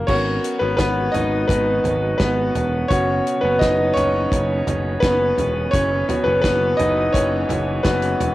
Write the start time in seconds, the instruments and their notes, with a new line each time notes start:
Already playing: grand piano A#3 A#4
0.07 picked electric bass G#1, string section D#3 F#3 G#3 B3 F#4, grand piano B3 C#4 F#4 A#4 C#5, kick, crash
0.44 closed hi-hat
0.59 picked electric bass G#1, grand piano B3 B4
0.77 picked electric bass G#1, grand piano B3 B4, kick, snare, closed hi-hat
1.12 picked electric bass G#1, grand piano D#4 D#5, closed hi-hat, floor tom
1.48 picked electric bass G#1, grand piano B3 B4, kick, closed hi-hat
1.84 picked electric bass G#1, closed hi-hat, floor tom
2.18 picked electric bass G#1, grand piano B3 B4, kick, snare, closed hi-hat
2.55 picked electric bass E1, closed hi-hat, floor tom
2.88 picked electric bass F#1, string section B2 C#3 C#4, grand piano B3 C#4 F#4 C#5, kick, closed hi-hat
3.27 closed hi-hat
3.41 picked electric bass F#1, grand piano B3 B4
3.59 picked electric bass F#1, grand piano D#4 D#5, kick, snare, closed hi-hat
3.94 picked electric bass F#1, grand piano C#4 C#5, closed hi-hat, floor tom
4.32 picked electric bass F#1, kick, closed hi-hat
4.67 picked electric bass F#1, closed hi-hat, floor tom
5.00 picked electric bass F#1, grand piano B3 B4, kick, snare, closed hi-hat
5.38 picked electric bass E1, closed hi-hat, floor tom
5.71 picked electric bass F#1, string section E3, grand piano C#4 C#5, kick, closed hi-hat
6.09 grand piano B3 C#4 F#4, closed hi-hat, floor tom
6.24 picked electric bass F#1, grand piano B3 B4
6.41 picked electric bass F#1, grand piano B3 B4, kick, snare, closed hi-hat
6.77 picked electric bass F#1, grand piano D#4 D#5, closed hi-hat, floor tom
7.12 picked electric bass F#1, grand piano C#4 C#5, kick, closed hi-hat
7.49 picked electric bass F#1, closed hi-hat, floor tom
7.83 picked electric bass F#1, grand piano B3 C#4 F#4 B4, kick, snare, closed hi-hat
8.02 closed hi-hat
8.20 picked electric bass E1, closed hi-hat, floor tom